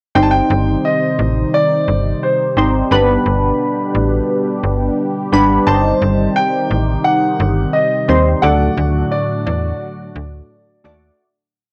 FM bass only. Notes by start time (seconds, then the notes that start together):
0.16 G1
0.50 G1
1.19 A1
1.88 G1
2.57 G#1
2.91 G1
3.26 G1
3.95 A1
4.63 G1
5.33 G#1
5.67 G1
6.02 G1
6.71 A1
7.40 G1
8.09 D#2
8.43 D2
8.77 D2
9.47 E2
10.16 D2
10.85 D#2